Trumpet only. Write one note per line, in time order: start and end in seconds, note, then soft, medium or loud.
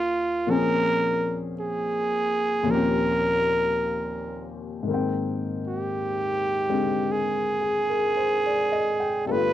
0.00 0.52 F4 medium
0.50 1.42 A#4 medium
1.60 2.72 G#4 medium
2.71 4.54 A#4 medium
5.67 7.14 G4 medium
7.12 9.26 G#4 medium
9.27 9.33 A4 medium
9.32 9.53 B4 medium